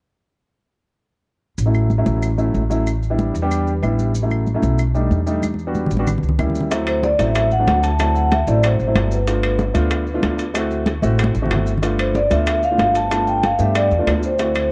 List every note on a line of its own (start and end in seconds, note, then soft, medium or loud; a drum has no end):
1.58 2.03 A1 medium
1.58 high conga soft
1.58 maracas medium
1.66 1.89 F#3 medium
1.66 1.89 A3 medium
1.66 1.89 C#4 medium
1.66 1.89 E4 medium
1.74 high conga soft
1.74 claves medium
1.74 maracas soft
1.90 high conga medium
1.90 maracas soft
1.98 2.26 F#3 medium
1.98 2.27 A3 medium
1.98 2.27 C#4 medium
1.98 2.27 E4 medium
2.06 2.51 A1 medium
2.06 high conga medium
2.06 maracas medium
2.22 high conga soft
2.22 claves medium
2.22 maracas medium
2.38 2.61 F#3 medium
2.38 2.61 A3 medium
2.38 2.61 C#4 medium
2.38 2.61 E4 medium
2.38 high conga soft
2.38 maracas soft
2.54 3.29 A1 medium
2.54 high conga medium
2.54 maracas soft
2.70 2.86 F#3 medium
2.70 2.86 A3 medium
2.70 2.86 C#4 medium
2.70 2.87 E4 medium
2.70 high conga soft
2.70 maracas medium
2.87 high conga soft
2.87 claves medium
2.87 maracas medium
3.03 high conga soft
3.03 maracas soft
3.10 3.33 G3 medium
3.10 3.33 B3 medium
3.10 3.33 D4 medium
3.10 3.33 E4 medium
3.19 high conga medium
3.19 maracas soft
3.34 3.79 E2 medium
3.34 high conga soft
3.34 maracas medium
3.42 3.70 G3 medium
3.42 3.71 B3 medium
3.42 3.71 D4 medium
3.42 3.71 G4 medium
3.51 high conga soft
3.51 claves medium
3.51 maracas medium
3.67 high conga soft
3.67 maracas soft
3.82 4.57 A1 medium
3.82 4.11 G3 medium
3.82 4.10 B3 medium
3.82 4.11 D4 medium
3.82 4.11 E4 medium
3.82 high conga medium
3.82 claves medium
3.82 maracas soft
3.99 high conga soft
3.99 maracas medium
4.15 high conga soft
4.15 maracas medium
4.22 4.45 F#3 medium
4.22 4.45 A3 medium
4.22 4.45 C#4 medium
4.22 4.45 E4 medium
4.31 high conga soft
4.31 claves medium
4.31 maracas soft
4.47 high conga medium
4.47 maracas soft
4.54 4.79 F#3 medium
4.54 4.79 A3 medium
4.54 4.79 C#4 medium
4.54 4.79 E4 medium
4.62 5.07 B1 medium
4.62 high conga medium
4.62 maracas medium
4.79 high conga soft
4.79 claves medium
4.79 maracas medium
4.95 5.17 G3 medium
4.95 5.17 A3 medium
4.95 5.18 D4 medium
4.95 5.18 D#4 medium
4.95 high conga soft
4.95 maracas soft
5.11 5.85 E2 medium
5.11 high conga medium
5.11 maracas soft
5.26 5.43 G3 medium
5.26 5.43 A3 medium
5.26 5.43 D4 medium
5.26 5.43 D#4 medium
5.26 high conga soft
5.26 maracas medium
5.43 high conga medium
5.43 claves medium
5.43 maracas medium
5.54 high conga medium
5.59 maracas soft
5.67 5.89 G3 medium
5.67 5.90 B3 medium
5.67 5.90 D4 medium
5.67 5.90 F#4 medium
5.75 high conga medium
5.75 maracas soft
5.87 low conga medium
5.91 6.21 A1 medium
5.91 maracas medium
5.97 6.07 G3 medium
5.97 6.07 B3 medium
5.97 6.07 D4 medium
5.97 6.07 F#4 medium
5.97 high conga medium
6.07 low conga medium
6.07 claves medium
6.07 maracas medium
6.18 low conga medium
6.23 6.38 C#2 medium
6.23 maracas soft
6.29 low conga medium
6.39 7.13 D2 medium
6.39 6.67 G3 medium
6.39 6.67 A#3 medium
6.39 6.67 C#4 medium
6.39 6.67 E4 medium
6.39 low conga medium
6.39 claves medium
6.39 maracas soft
6.50 low conga medium
6.55 maracas medium
6.61 low conga medium
6.71 7.05 F#3 medium
6.71 7.05 A3 medium
6.71 7.05 C4 medium
6.71 7.05 E4 medium
6.71 high bongo medium
6.71 high conga soft
6.71 high timbale medium
6.71 maracas medium
6.87 7.03 C5 medium
6.87 high bongo soft
6.87 high conga soft
6.87 high timbale medium
6.87 claves medium
6.87 maracas soft
7.03 7.18 D5 medium
7.03 high bongo medium
7.03 high conga medium
7.03 low timbale medium
7.03 maracas soft
7.19 7.64 A1 medium
7.19 7.47 F#3 medium
7.19 7.47 A3 medium
7.19 7.47 C4 medium
7.19 7.47 E4 medium
7.19 7.53 E5 medium
7.19 high bongo soft
7.19 high conga medium
7.19 high timbale medium
7.19 maracas medium
7.35 high bongo medium
7.35 high conga soft
7.35 high timbale medium
7.35 claves medium
7.35 maracas medium
7.51 7.85 F#5 medium
7.51 high conga soft
7.51 maracas soft
7.59 7.87 F#3 medium
7.59 7.87 A3 medium
7.59 7.87 C4 medium
7.59 7.88 D4 medium
7.67 8.42 D2 medium
7.67 high bongo medium
7.67 low bongo medium
7.67 high conga medium
7.67 high timbale medium
7.67 low timbale medium
7.67 maracas soft
7.83 8.13 A5 loud
7.83 high bongo soft
7.83 high conga soft
7.83 high timbale medium
7.83 maracas medium
7.99 8.33 F#3 medium
7.99 8.33 A3 medium
7.99 8.33 C4 medium
7.99 8.33 E4 medium
7.99 high bongo medium
7.99 high conga soft
7.99 high timbale medium
7.99 claves medium
7.99 maracas medium
8.15 8.32 F#5 medium
8.15 high bongo soft
8.15 high conga soft
8.15 maracas soft
8.31 8.48 E5 medium
8.31 high bongo medium
8.31 high conga medium
8.31 high timbale medium
8.31 low timbale medium
8.31 maracas soft
8.47 8.77 A1 medium
8.47 8.75 F#3 medium
8.47 8.75 A3 medium
8.47 8.75 C4 medium
8.47 8.76 E4 medium
8.47 8.55 D5 medium
8.47 high bongo soft
8.47 high conga soft
8.47 maracas medium
8.63 8.93 C5 medium
8.63 high bongo medium
8.63 high conga soft
8.63 high timbale medium
8.63 claves medium
8.63 maracas medium
8.79 8.94 A1 medium
8.79 high bongo soft
8.79 high conga soft
8.79 maracas soft
8.87 9.15 F#3 medium
8.87 9.15 A3 medium
8.87 9.15 C4 medium
8.87 9.16 E4 medium
8.95 9.70 G1 medium
8.95 high bongo medium
8.95 low bongo medium
8.95 high conga medium
8.95 high timbale medium
8.95 low timbale medium
8.95 claves medium
8.95 maracas soft
9.11 9.71 B4 medium
9.11 maracas medium
9.27 9.61 A3 medium
9.27 9.61 B3 medium
9.27 9.61 D4 medium
9.27 9.61 F4 medium
9.27 high bongo medium
9.27 high conga soft
9.27 high timbale medium
9.27 maracas medium
9.43 high bongo soft
9.43 high conga soft
9.43 high timbale medium
9.43 claves medium
9.43 maracas soft
9.59 high bongo medium
9.59 high conga medium
9.59 low timbale medium
9.59 maracas soft
9.74 10.20 D2 medium
9.74 10.03 A3 medium
9.74 10.03 B3 medium
9.74 10.03 D4 medium
9.74 10.03 F4 loud
9.74 high bongo soft
9.74 high conga medium
9.74 high timbale medium
9.74 maracas medium
9.91 high bongo medium
9.91 high conga soft
9.91 high timbale medium
9.91 claves medium
9.91 maracas medium
10.07 high conga soft
10.07 maracas soft
10.14 10.43 A3 medium
10.14 10.43 B3 medium
10.14 10.43 D4 medium
10.14 10.43 F4 medium
10.23 10.98 D2 medium
10.23 high bongo medium
10.23 low bongo medium
10.23 high conga medium
10.23 high timbale medium
10.23 low timbale medium
10.23 maracas soft
10.39 high bongo soft
10.39 high conga soft
10.39 high timbale medium
10.39 maracas medium
10.54 10.88 A3 medium
10.54 10.89 C4 medium
10.54 10.89 E4 medium
10.54 10.89 F#4 medium
10.54 high bongo medium
10.54 high conga soft
10.54 high timbale medium
10.54 claves medium
10.54 maracas medium
10.70 high bongo soft
10.70 high conga soft
10.70 maracas soft
10.86 high bongo medium
10.86 high conga medium
10.86 high timbale medium
10.86 low timbale medium
10.86 maracas soft
11.02 11.33 A1 medium
11.02 11.31 A3 medium
11.02 11.31 C4 medium
11.02 11.31 E4 medium
11.02 11.31 F#4 loud
11.02 high bongo soft
11.02 high conga medium
11.02 maracas medium
11.19 high bongo medium
11.19 high timbale medium
11.19 claves medium
11.19 maracas medium
11.24 high conga medium
11.35 11.50 A1 medium
11.35 high bongo soft
11.35 high conga medium
11.35 maracas soft
11.42 11.71 A3 medium
11.42 11.71 C4 medium
11.42 11.71 E4 medium
11.42 11.71 F#4 medium
11.42 low conga medium
11.51 12.25 G1 medium
11.51 high bongo medium
11.51 low bongo medium
11.51 high timbale medium
11.51 low timbale medium
11.51 claves medium
11.51 maracas soft
11.56 low conga medium
11.67 maracas medium
11.78 low conga medium
11.83 12.17 A3 medium
11.83 12.17 B3 medium
11.83 12.17 D4 medium
11.83 12.17 F4 medium
11.83 high bongo medium
11.83 high timbale medium
11.83 maracas medium
11.99 12.14 C5 medium
11.99 high bongo soft
11.99 high conga soft
11.99 high timbale medium
11.99 claves medium
11.99 maracas soft
12.15 12.32 D5 medium
12.15 high bongo medium
12.15 high conga medium
12.15 low timbale medium
12.15 maracas soft
12.30 12.76 D2 medium
12.30 12.59 A3 medium
12.30 12.59 B3 medium
12.30 12.59 D4 medium
12.30 12.59 F4 medium
12.30 12.65 E5 medium
12.30 high bongo soft
12.30 high conga medium
12.30 high timbale medium
12.30 maracas medium
12.46 high bongo medium
12.46 high conga soft
12.46 high timbale medium
12.46 claves medium
12.46 maracas medium
12.63 12.93 F5 medium
12.63 high conga soft
12.63 maracas soft
12.71 12.99 A3 medium
12.71 12.99 B3 medium
12.71 12.99 D4 medium
12.71 12.99 F4 medium
12.78 13.54 G1 medium
12.78 high bongo medium
12.78 low bongo medium
12.78 high conga medium
12.78 high timbale medium
12.78 low timbale medium
12.78 maracas soft
12.95 13.26 A5 loud
12.95 high bongo soft
12.95 high conga soft
12.95 high timbale medium
12.95 maracas medium
13.11 13.45 A3 medium
13.11 13.45 B3 medium
13.11 13.45 D4 medium
13.11 13.45 F4 medium
13.11 high bongo medium
13.11 high conga soft
13.11 high timbale medium
13.11 claves medium
13.11 maracas medium
13.27 13.35 G5 medium
13.27 high bongo soft
13.27 high conga soft
13.27 maracas soft
13.43 13.60 F5 medium
13.43 high bongo medium
13.43 high conga medium
13.43 high timbale medium
13.43 low timbale medium
13.43 maracas soft
13.59 13.89 G2 medium
13.59 13.87 A3 medium
13.59 13.87 B3 medium
13.59 13.87 D4 medium
13.59 13.87 G4 medium
13.59 13.75 E5 medium
13.59 high bongo soft
13.59 high conga soft
13.59 maracas medium
13.75 14.06 D5 medium
13.75 high bongo medium
13.75 high conga soft
13.75 high timbale loud
13.75 claves medium
13.75 maracas medium
13.91 14.06 E2 medium
13.91 high bongo soft
13.91 high conga soft
13.91 maracas soft
13.99 14.27 A3 medium
13.99 14.27 B3 medium
13.99 14.27 D4 medium
13.99 14.27 F4 medium
14.07 14.72 D2 medium
14.07 high bongo medium
14.07 low bongo medium
14.07 high conga medium
14.07 high timbale medium
14.07 low timbale medium
14.07 claves medium
14.07 maracas soft
14.23 14.72 C5 medium
14.23 high conga soft
14.23 maracas medium
14.39 14.72 A3 medium
14.39 14.72 C4 medium
14.39 14.72 E4 medium
14.39 14.72 F#4 medium
14.39 high bongo medium
14.39 high conga soft
14.39 high timbale medium
14.39 maracas medium
14.55 high bongo soft
14.55 high conga soft
14.55 high timbale medium
14.55 claves medium
14.55 maracas soft